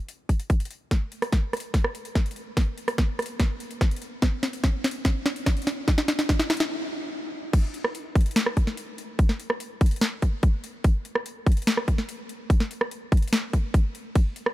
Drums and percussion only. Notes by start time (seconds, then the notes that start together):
0.09 closed hi-hat
0.29 kick, closed hi-hat
0.40 closed hi-hat
0.50 kick, closed hi-hat
0.60 closed hi-hat
0.65 closed hi-hat
0.71 closed hi-hat
0.91 kick, snare, closed hi-hat
1.12 closed hi-hat
1.22 cross-stick, closed hi-hat
1.32 kick, snare, closed hi-hat
1.53 cross-stick, closed hi-hat
1.57 closed hi-hat
1.60 closed hi-hat
1.74 kick, snare, closed hi-hat
1.84 cross-stick
1.95 closed hi-hat
2.05 closed hi-hat
2.15 kick, snare, closed hi-hat
2.26 closed hi-hat
2.31 closed hi-hat
2.36 closed hi-hat
2.57 kick, snare, closed hi-hat
2.78 closed hi-hat
2.88 cross-stick, closed hi-hat
2.98 kick, snare, closed hi-hat
3.19 cross-stick, closed hi-hat
3.22 closed hi-hat
3.26 closed hi-hat
3.40 kick, snare, closed hi-hat
3.60 closed hi-hat
3.71 closed hi-hat
3.81 kick, snare, closed hi-hat
3.91 closed hi-hat
3.96 closed hi-hat
4.02 closed hi-hat
4.22 kick, snare, closed hi-hat
4.43 snare, closed hi-hat
4.53 closed hi-hat
4.64 kick, snare, closed hi-hat
4.84 snare, closed hi-hat
4.88 closed hi-hat
4.91 closed hi-hat
5.05 kick, snare, closed hi-hat
5.26 snare, closed hi-hat
5.36 closed hi-hat
5.46 kick, snare, closed hi-hat
5.57 closed hi-hat
5.62 closed hi-hat
5.67 snare, closed hi-hat
5.88 kick, snare, closed hi-hat
5.98 snare
6.08 snare, closed hi-hat
6.19 snare, closed hi-hat
6.29 kick, snare, closed hi-hat
6.39 snare
6.50 snare, closed hi-hat
6.53 closed hi-hat
6.57 snare, closed hi-hat
7.53 kick, closed hi-hat, crash
7.74 closed hi-hat
7.84 cross-stick
7.95 closed hi-hat
8.15 kick, closed hi-hat
8.21 closed hi-hat
8.26 closed hi-hat
8.31 closed hi-hat
8.36 snare, closed hi-hat
8.46 cross-stick
8.57 kick, closed hi-hat
8.67 snare
8.77 closed hi-hat
8.98 closed hi-hat
9.19 kick, closed hi-hat
9.29 snare
9.40 closed hi-hat
9.50 cross-stick
9.60 closed hi-hat
9.81 kick, closed hi-hat
9.86 closed hi-hat
9.91 closed hi-hat
9.96 closed hi-hat
10.01 snare, closed hi-hat
10.22 kick, closed hi-hat
10.43 kick, closed hi-hat
10.64 closed hi-hat
10.84 kick, closed hi-hat
11.05 closed hi-hat
11.15 cross-stick
11.26 closed hi-hat
11.46 kick, closed hi-hat
11.52 closed hi-hat
11.57 closed hi-hat
11.62 closed hi-hat
11.67 snare, closed hi-hat
11.77 cross-stick
11.88 kick, closed hi-hat
11.98 snare
12.09 closed hi-hat
12.29 closed hi-hat
12.50 kick, closed hi-hat
12.60 snare
12.71 closed hi-hat
12.81 cross-stick
12.91 closed hi-hat
13.12 kick, closed hi-hat
13.17 closed hi-hat
13.22 closed hi-hat
13.28 closed hi-hat
13.33 snare
13.53 kick, closed hi-hat
13.74 kick, closed hi-hat
13.95 closed hi-hat
14.15 kick, closed hi-hat, ride
14.36 closed hi-hat
14.46 cross-stick